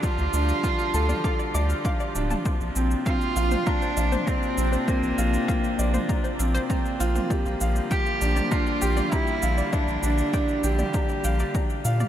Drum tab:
SH |xxxxxxxxxxxxxxxx|xxxxxxxxxxxxxxxx|xxxxxxxxxxxxxxxx|xxxxxxxxxxxxxxxx|
T2 |-------o-------o|-------o---o----|-------o-------o|-------o---o----|
BD |o---o---o---o---|o---o---o---o---|o---o---o---o---|o---o---o---o---|

SH |xxxxxxxxxxxxxxxx|
T2 |-------o-------o|
BD |o---o---o---o---|